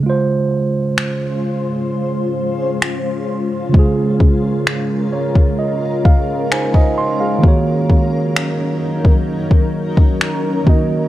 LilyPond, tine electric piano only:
\new Staff \with { instrumentName = "Tine electric piano" } { \time 4/4 \key des \major \tempo 4 = 65 << { r1 | r4. des''8 ees''8 f''8 <ees' c'' aes''>16 ees''16 c'''16 <aes' f''>16~ | <aes' f''>16 r2. r8. | } \\ { <des aes f' c''>1 | <des aes f' aes'>1 | <ees bes ges' des''>2.~ <ees bes ges' des''>8 <ees bes ges' ees''>8 | } >> }